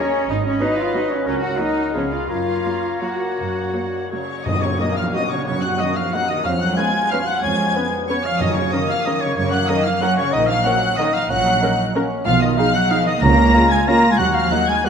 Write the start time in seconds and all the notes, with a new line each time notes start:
Already playing: F#3 C#4 C#5 D#5 A#5
0.28 G#1 F#3 D#4 D#5 B5
0.45 C#4 C#5
0.60 F#3 B3 D#4 B4 D#5
0.76 F4 F5
0.92 F#3 B3 D#4 D#5
1.10 C#4 C#5
1.26 C#2 C#4 A#4 C#5 F#5 A#5
1.42 F#4 F#5
1.58 F#3 A#3 D#4 D#5
1.93 C#2 F3 G#3 B3 C#4 G#4 C#5 F5 B5
2.11 F4 F5
2.28 F#2 A#3 F4 A#4 C#5 F5 A#5
2.65 F#3 A#3
3.02 F#3 A#3 F#4 F#5
3.39 F#2
3.74 F#3 A#3
4.11 C#3 F#3 A#3 C#5 C#6
4.46 F#2 D#3 D#5 D#6, tam-tam
4.62 C#3 C#5 C#6
4.79 D#3 A#3 C#4 F#4 D#5 D#6
4.96 F3 F5 F6
5.14 D#3 A#3 C#4 F#4 D#5 D#6
5.31 C#3 C#5 C#6
5.46 F#2 C#3 C#5 C#6
5.62 F#3 F#5 F#6
5.78 D#3 A#3 C#4 F#4 D#5 D#6
5.96 F3 F5 F6
6.13 F#3 A#3 C#4 D#4 F#4 F#5 F#6
6.30 D#3 D#5 D#6
6.45 F2 F3 C#4 F5 F6
6.60 F#3 F#5 F#6
6.76 G#3 B3 C#4 F4 B4 G#5 G#6
7.10 F3 B3 C#4 B4 F5 F6
7.26 F#3 F#5 F#6
7.41 F2 G#3 C#4 G#5 G#6
7.75 B3 C#4 B4
8.07 C#3 B3 C#4 B4 C#5 C#6
8.24 F3 F5 F6
8.39 F#2 D#3 D#5 D#6
8.54 C#3 C#5 C#6
8.71 D#3 A#3 C#4 A#4 D#5 D#6
8.88 F3 F5 F6
9.04 D#3 A#3 C#4 A#4 D#5 D#6
9.20 C#3 C#5 C#6
9.36 F#2 C#3 C#5 C#6
9.52 F#3 F#5 F#6
9.68 D#3 A#3 C#4 A#4 D#5 D#6
9.85 F3 F5 F6
10.00 F#3 A#3 C#4 A#4 F#5 F#6
10.17 C#3 C#5 C#6
10.32 A#1 D#3 D#4 D#5 D#6
10.47 F3 F5 F6
10.63 F#3 A#3 C#4 A#4 F#5 F#6
10.97 D#3 A#3 C#4 D#4 A#4 D#5 D#6
11.14 F3 F5 F6
11.30 A#1 F#3 C#4 F#5 F#6
11.61 A#3 C#4 D#4 A#4
11.95 A#3 C#4 A#4
12.25 B1 F3 F4 F5 F6
12.40 D#3 D#5 D#6
12.56 F3 G#3 D#4 G#4 F5 F6
12.74 F#3 F#5 F#6
12.90 F3 G#3 D#4 G#4 F5 F6
13.06 D#3 D#5 D#6
13.21 C#2 C#3 A#3 C#4 A#5 A#6
13.54 G#3 C#4 F4
13.71 G#3 G#5 G#6
13.87 G#3 A#3 C#4 F4 A#5 A#6
14.10 G#3 G#5 G#6
14.18 D#2 F#3 F#4 F#5 F#6
14.34 F3 F5 F6
14.50 F#3 A#3 D#4 F#4 F#5 F#6
14.67 G#3 G#5 G#6
14.85 F#3 A#3 D#4 F#5 F#6